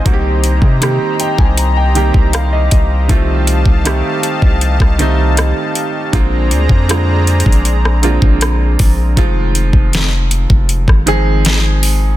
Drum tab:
HH |x-----x-----x-----x-----x-----x-----x-----x-----|x-----x-----x-----x-----x-----x-----x-----x-----|x-----x-----x-----x-x-x-x-----x-----x-----o-----|x-----x-----x-----x-----x-----x-----x-----o-----|
SD |------------r-----------------------r-----------|------------r--------------r--------r-----------|------------r--------------r--------r-----------|------------o--------------r--------o-----------|
BD |o--------o-----------o-----------o--------o-----|o--------o-----------o-----o--------------------|o--------o-----------o-----------o--------o-----|o--------o-----------o-----o--------------------|